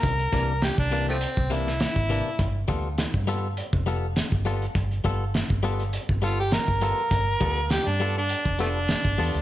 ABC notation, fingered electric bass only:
X:1
M:4/4
L:1/16
Q:"Swing 16ths" 1/4=102
K:C
V:1 name="Fingered electric bass" clef=bass
C,,2 C,,3 C,,4 C,,4 _A,,,2 z | G,,,2 D,,3 G,,4 F,,,4 G,,,3 | G,,,2 G,,,3 G,,,4 G,,,4 G,,,2 z | G,,,2 D,,3 G,,4 F,,,4 G,,, E,, D,, |]